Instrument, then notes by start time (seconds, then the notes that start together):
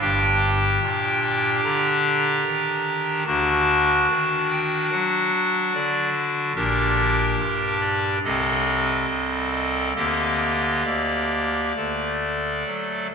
pipe organ
0.01 G1 G2 D4 G4 G5
0.82 A#2
1.22 G5
1.64 D3 A#5
2.46 D#3
3.26 D2 D3 D4 F#4 A5
4.10 D#3
4.50 G5
4.92 F#3 F#5
5.74 D3 D5
6.55 A#1 A#2 D4 G4 A#4
7.37 G2
7.80 D5
8.24 C2 C3 C4 A4 D#5
9.08 C2
9.51 D#5
9.96 D2 D3 A#3 G4 D#5
10.85 D2 D5
11.76 D2 D3 A3 A4
12.66 F#3